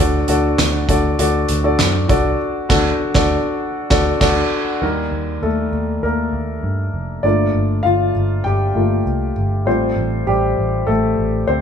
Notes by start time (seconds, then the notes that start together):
Already playing: D3 D4 F#4
0.00 D2 A4 D5
0.28 D2 D4 F#4 A4 D5, closed hi-hat
0.58 D2, snare, clap, closed hi-hat
0.89 D2 D4 F#4 A4 D5, kick, closed hi-hat
1.19 D2 D4 F#4 A4 D5, closed hi-hat
1.49 D2, closed hi-hat
1.64 D4 F#4 A4 D5
1.79 F#2, snare, clap, closed hi-hat
2.08 C2 D4 F#4 A4 D5, kick, closed hi-hat
2.69 D2 D4 F#4 A4, kick, snare, crash
3.14 D2 D4 F#4 A4 D5, kick, snare
3.90 D2 D4 F#4 A4 D5, kick, snare
4.20 D2 D4 F#4 A4 D5, kick, snare, crash
4.81 D#2 G3 A#3 D#4 A#4
5.12 D#2
5.42 D#2 A3 A4
5.72 D#2
6.03 D#2 A#3 A#4
6.33 D#2
6.63 G2
6.94 F1
7.23 G1 A3 A#3 D4 F4 D5
7.55 G1
7.83 G1 F4 F5
8.16 G1
8.44 G1 G4 G5
8.75 G1 A3 A#3 F4
9.06 C2
9.36 G1
9.65 A1 G3 A3 C4 F4 C5
9.96 A1
10.27 A1 G3 G4
10.57 A1
10.87 A1 A3 A4
11.17 A1
11.47 D2 C4 C5